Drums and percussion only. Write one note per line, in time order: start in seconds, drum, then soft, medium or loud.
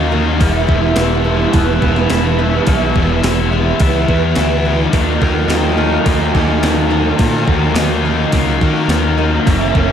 0.41 kick medium
0.41 open hi-hat soft
0.69 kick medium
0.96 snare loud
0.96 open hi-hat soft
1.53 kick medium
1.53 open hi-hat soft
1.82 kick medium
1.96 snare soft
2.10 snare medium
2.10 open hi-hat soft
2.67 kick loud
2.67 open hi-hat medium
2.96 kick medium
3.24 snare loud
3.24 open hi-hat medium
3.80 kick loud
3.80 open hi-hat medium
4.09 kick medium
4.35 snare medium
4.35 open hi-hat soft
4.93 kick loud
4.93 open hi-hat medium
5.22 kick medium
5.50 snare loud
5.50 open hi-hat soft
6.06 kick loud
6.06 open hi-hat soft
6.35 kick medium
6.63 snare medium
6.63 open hi-hat soft
7.19 kick loud
7.19 open hi-hat medium
7.48 kick medium
7.75 snare loud
7.75 open hi-hat medium
8.32 kick medium
8.32 open hi-hat medium
8.61 kick medium
8.89 snare loud
8.89 open hi-hat soft
9.47 kick loud
9.47 open hi-hat medium
9.75 kick medium